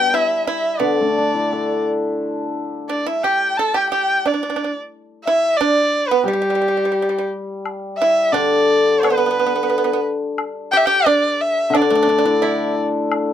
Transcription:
Already playing: hammered dulcimer B2 G4, pipa G4, erhu G5
0.14 pipa E4, erhu E5
0.47 pipa E4, erhu E5
0.80 hammered dulcimer D3, pipa B3, erhu D5
1.01 hammered dulcimer A3
1.12 pipa D4
1.18 hammered dulcimer D4
1.34 hammered dulcimer E4
1.53 hammered dulcimer A4
2.89 pipa D4, erhu D5
3.06 pipa E4, erhu E5
3.24 pipa G4, erhu G5
3.57 pipa A4, erhu A5
3.74 pipa G4, erhu G5
3.90 pipa G4, erhu G5
4.26 pipa D4, erhu D5
4.34 pipa D4
4.43 pipa D4
4.50 pipa D4
4.56 pipa D4
4.64 pipa D4
5.25 pipa E4, erhu E5
5.57 erhu D5
5.61 pipa D4
6.08 pipa B3, erhu B4
6.24 hammered dulcimer G3, erhu G4
6.28 pipa G3
6.33 pipa G3
6.42 pipa G3
6.50 pipa G3
6.55 pipa G3
6.62 pipa G3
6.68 pipa G3
6.77 pipa G3
6.85 pipa G3
6.92 pipa G3
7.02 pipa G3
7.09 pipa G3
7.18 pipa G3
7.66 high woodblock
7.98 pipa E4, erhu E5
8.32 hammered dulcimer D3, pipa D4, erhu D5
9.01 pipa B3, erhu B4, high woodblock
9.10 pipa B3
9.18 pipa B3
9.26 pipa B3
9.31 pipa B3
9.40 pipa B3
9.46 pipa B3
9.56 pipa B3
9.63 pipa B3
9.70 pipa B3
9.78 pipa B3
9.84 pipa B3
9.93 pipa B3
10.38 high woodblock
10.71 pipa G4, erhu G5
10.77 erhu E5
10.86 pipa G4, erhu G5
11.06 pipa D4, erhu D5
11.41 erhu E5
11.70 hammered dulcimer D3, high woodblock
11.75 pipa D4, erhu D5
11.82 pipa D4
11.90 hammered dulcimer A3, pipa D4
11.95 pipa D4
12.03 pipa D4
12.07 hammered dulcimer D4, pipa D4
12.18 pipa D4
12.25 pipa D4, hammered dulcimer E4
12.42 pipa E4, hammered dulcimer A4, low woodblock
13.12 high woodblock

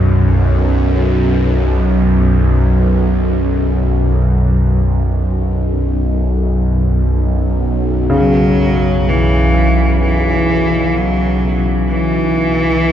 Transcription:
Already playing: synth drone B1 F#2
8.09 synth drone B1, grand piano C#3
8.14 cello F#3
9.09 cello E3
10.02 cello E3
10.96 cello F#3
11.90 cello E3

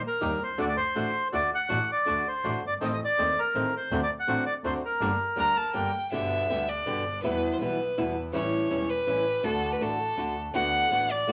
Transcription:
0.07 bandoneon A#4
0.20 double bass D#2, nylon-string guitar D#3 G3 A#3 D#4 G4, bandoneon A#3 D#4 G4
0.40 double bass C2, bandoneon C5
0.57 double bass D2, nylon-string guitar D3 A3 D4 F#4, bandoneon A3 D4 F#4 D5
0.68 bandoneon D5
0.77 bandoneon C5
0.95 double bass A1, nylon-string guitar D3 A3 D4 F#4, bandoneon A3 D4 F#4
1.32 double bass D2, nylon-string guitar D3 A3 D4 F#4, bandoneon A3 D4 F#4 D5
1.55 bandoneon F#5
1.69 double bass A1, nylon-string guitar D3 A3 D4 F#4, bandoneon A3 D4 F#4
1.92 bandoneon D5
2.06 double bass D2, nylon-string guitar D3 A3 D4 F#4, bandoneon A3 D4 F#4
2.28 bandoneon C5
2.43 double bass A1, nylon-string guitar D3 A3 D4 F#4, bandoneon A3 D4 F#4
2.63 double bass G1
2.67 bandoneon D5
2.80 double bass A1, nylon-string guitar D#3 A3 C4, bandoneon A3 C4 D#4
2.85 bandoneon D#5
2.94 bandoneon D#5
3.05 bandoneon D5
3.18 double bass D#2, nylon-string guitar D#3 A3 C4, bandoneon A3 C4 D#4
3.39 bandoneon A#4
3.54 double bass A1, nylon-string guitar D#3 A3 C4, bandoneon A3 C4 D#4
3.77 bandoneon C5
3.91 double bass D2, nylon-string guitar D3 A3 C4 F#4, bandoneon F#3 C4 D4
4.03 bandoneon D5
4.20 bandoneon F#5
4.27 double bass A1, nylon-string guitar D3 A3 C4 F#4, bandoneon F#3 C4 D4
4.46 bandoneon D5
4.63 double bass D2, nylon-string guitar D3 A3 C4 F#4, bandoneon F#3 C4 D4 C5
4.85 bandoneon A#4
5.00 double bass G1, nylon-string guitar D3 G3 A#3 D4 G4, bandoneon G3 A#3 D4
5.36 double bass D2, nylon-string guitar D3 G3 A#3 D4 G4, bandoneon G3 A#3 D4, violin A#5
5.57 violin A5
5.74 double bass G1, nylon-string guitar D3 G3 A#3 D4 G4, bandoneon G3 A#3 D4, violin G5
6.12 double bass G1, nylon-string guitar B2 D3 G3 B3 G4, bandoneon G3 B3 D4, violin E5
6.49 double bass D2, nylon-string guitar B2 D3 G3 B3 G4, bandoneon G3 B3 D4
6.69 violin D5
6.86 double bass G1, nylon-string guitar B2 D3 G3 B3 G4, bandoneon G3 B3 D4
7.22 double bass E2, nylon-string guitar B2 E3 G3 B3 E4, bandoneon G3 B3 E4, violin B4
7.53 violin C5
7.59 double bass B1, nylon-string guitar B2 E3 G3 B3 E4, bandoneon G3 B3 E4, violin B4
7.96 double bass E2, nylon-string guitar B2 E3 G3 B3 E4, bandoneon G3 B3 E4
8.32 double bass A1, nylon-string guitar E3 G3 C#4 E4, bandoneon A3 C#4 G4, violin C#5
8.69 double bass E1, nylon-string guitar E3 G3 C#4 E4, bandoneon A3 C#4 G4
8.90 violin B4
9.06 double bass A1, nylon-string guitar E3 G3 C#4 E4, bandoneon A3 C#4 G4
9.42 double bass D2, nylon-string guitar D3 A3 D4 F#4, bandoneon A3 D4 F#4, violin A4
9.72 violin B4
9.80 double bass A1, nylon-string guitar D3 A3 D4 F#4, bandoneon A3 D4 F#4, violin A4
10.16 double bass D2, nylon-string guitar D3 A3 D4 F#4, bandoneon A3 D4 F#4
10.53 double bass D2, nylon-string guitar D3 A3 B3 F#4, bandoneon B3 D4 F#4, violin F#5
10.90 double bass A1, nylon-string guitar D3 A3 B3 F#4, bandoneon B3 D4 F#4
11.11 violin D5
11.27 double bass D2, nylon-string guitar D3 A3 B3 F#4, bandoneon B3 D4 F#4

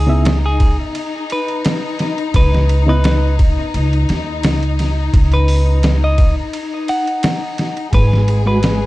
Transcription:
Already playing: upright bass C#2, string section D#4, clean electric guitar G#4
0.07 reed electric piano C#3 B3 E4 E5
0.25 snare, ride
0.46 clean electric guitar G#4
0.60 kick, ride
0.95 ride
1.30 clean electric guitar B4, ride
1.48 ride
1.65 snare, ride
1.99 snare, ride
2.18 ride
2.34 upright bass C#2, clean electric guitar B4, kick, ride
2.54 snare
2.69 ride
2.87 reed electric piano C#3 B3 E4 D#5, clean electric guitar B4
3.04 snare, ride
3.39 kick, ride
3.74 upright bass C#2, ride
3.93 ride
4.09 upright bass D#2, snare, ride
4.43 upright bass C#2, snare, ride
4.63 ride
4.79 snare, ride
5.13 upright bass C#2, kick, ride
5.32 clean electric guitar B4, ride
5.48 open hi-hat
5.83 snare, ride
6.04 clean electric guitar D#5
6.18 kick, ride
6.53 ride
6.88 clean electric guitar F#5, ride
7.07 ride
7.23 snare, ride
7.58 snare, ride
7.77 ride
7.93 upright bass G#1, string section G#3 G#4, clean electric guitar B4, kick, ride
8.13 snare
8.28 ride
8.46 reed electric piano G#3 F#4 B4, clean electric guitar B4
8.63 snare, ride

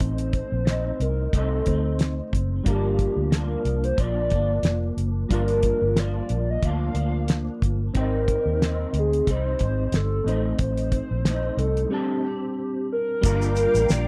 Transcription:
Already playing: clean electric guitar A2 A3 C4 D#4, reed electric piano C4 D#4 C5
0.00 fingered electric bass A1, soft synth lead C5, kick, closed hi-hat
0.18 closed hi-hat
0.33 kick, closed hi-hat
0.52 fingered electric bass A#1
0.65 clean electric guitar A2 C4 D#4, snare, closed hi-hat
1.00 fingered electric bass C2, soft synth lead A#4, closed hi-hat
1.33 fingered electric bass C2, clean electric guitar A2 A3 C4 D#4, soft synth lead A4, kick, closed hi-hat
1.66 fingered electric bass D2, reed electric piano A3 C4 D#4 C5, clean electric guitar C4 D#4, kick, closed hi-hat
1.70 clean electric guitar A3
1.99 snare, closed hi-hat
2.33 fingered electric bass F#1, kick, closed hi-hat
2.63 fingered electric bass G1, clean electric guitar G2 F3 A#3, reed electric piano G3 D4 F4, kick, closed hi-hat
2.68 clean electric guitar D4, soft synth lead G4, reed electric piano A#4
2.99 kick, closed hi-hat
3.16 fingered electric bass D2
3.30 clean electric guitar G2 F3 A#3, snare, closed hi-hat
3.34 clean electric guitar D4, soft synth lead A#4
3.65 fingered electric bass C2, closed hi-hat
3.84 soft synth lead C5, closed hi-hat
3.97 fingered electric bass A#1, clean electric guitar G2 F3 A#3 D4, soft synth lead D5, kick, closed hi-hat
4.30 fingered electric bass G1, clean electric guitar F3 A#3 D4, kick, closed hi-hat
4.63 fingered electric bass F1, snare, closed hi-hat
4.97 fingered electric bass F#1, closed hi-hat
5.29 fingered electric bass G1, clean electric guitar G2 F3 A#3 D4, reed electric piano G3 D4 F4, soft synth lead A#4, kick, closed hi-hat
5.34 reed electric piano A#4
5.48 closed hi-hat
5.63 kick, closed hi-hat
5.82 fingered electric bass G1
5.96 clean electric guitar G2 F3 A#3 D4, soft synth lead D5, snare, closed hi-hat
6.29 fingered electric bass A#1, closed hi-hat
6.50 soft synth lead D#5
6.62 fingered electric bass D2, clean electric guitar G2 F3 A#3 D4, soft synth lead F5, kick, closed hi-hat
6.94 fingered electric bass D2, clean electric guitar A#3 D4, closed hi-hat
6.99 clean electric guitar F3
7.28 snare, closed hi-hat
7.62 fingered electric bass G1, kick, closed hi-hat
7.94 fingered electric bass G#1, clean electric guitar G#2 G3 C4 D#4, reed electric piano C4 D#4 G5, kick, closed hi-hat
7.99 soft synth lead A#4, reed electric piano C5
8.28 kick, closed hi-hat
8.46 fingered electric bass D#2
8.61 clean electric guitar G#2 C4 D#4, snare, closed hi-hat
8.93 fingered electric bass D2, closed hi-hat
8.99 soft synth lead G#4
9.13 closed hi-hat
9.27 fingered electric bass C2, clean electric guitar G3 C4 D#4, soft synth lead C5, kick, closed hi-hat
9.59 fingered electric bass G#1, kick, closed hi-hat
9.92 fingered electric bass G1, soft synth lead A4, snare, closed hi-hat
10.24 fingered electric bass A1, reed electric piano A3 C4 D#4, clean electric guitar A3 C4 D#4, closed hi-hat
10.29 clean electric guitar A2, reed electric piano C5
10.59 fingered electric bass A1, soft synth lead C5, kick, closed hi-hat
10.77 closed hi-hat
10.92 kick, closed hi-hat
11.11 fingered electric bass A#1
11.25 clean electric guitar A2 A3 C4 D#4, snare, closed hi-hat
11.57 fingered electric bass C2, soft synth lead A4, closed hi-hat
11.77 closed hi-hat
11.88 clean electric guitar D3 A3, reed electric piano G3 C4 D4, soft synth lead G4
11.93 clean electric guitar C4 G4, reed electric piano A5
12.24 clean electric guitar C4 G4
12.92 soft synth lead A#4
13.21 fingered electric bass G1, reed electric piano G3 A#3 D4 F4, clean electric guitar G3 D4, string machine A#4 F5 G5 D6, kick, closed hi-hat, shaker
13.26 clean electric guitar F4 A#4, reed electric piano A#4
13.42 closed hi-hat, shaker
13.56 closed hi-hat, shaker
13.74 fingered electric bass A1, closed hi-hat, shaker
13.89 fingered electric bass A#1, soft synth lead D5, snare, closed hi-hat, shaker

